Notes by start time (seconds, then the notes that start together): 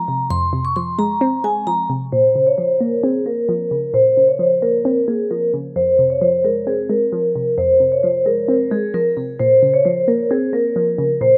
Already playing: F3 G#3 C4 A#5
0.08 C3
0.30 F2 C6
0.53 C3
0.65 C#6
0.76 F3 C6
0.98 G#3 A#5
1.21 C4
1.44 G#3 G#5
1.67 F3 A#5
1.90 C3
2.12 A#2 C5
2.35 C#3
2.46 C#5
2.58 F3 C5
2.80 A#3 A#4
3.03 C4 G#4
3.26 A#3 A#4
3.49 F3
3.71 C#3
3.94 A#2 C5
4.17 C#3
4.28 C#5
4.39 F3 C5
4.62 A#3 A#4
4.85 C4
5.08 A#3 G#4
5.31 F3 A#4
5.54 C#3
5.76 F2 C5
5.99 C3
6.10 C#5
6.21 F3 C5
6.44 G#3 A#4
6.67 C4 G#4
6.89 G#3 A#4
7.12 F3
7.36 C3
7.58 F2 C5
7.80 C3
7.92 C#5
8.03 F3 C5
8.26 G#3 A#4
8.48 C4
8.71 G#3 G#4
8.94 F3 A#4
9.17 C3
9.39 A#2 C5
9.63 C#3
9.74 C#5
9.85 F3 C5
10.08 A#3 A#4
10.31 C4 G#4
10.53 A#3 A#4
10.76 F3
10.98 C#3
11.21 A#2 C5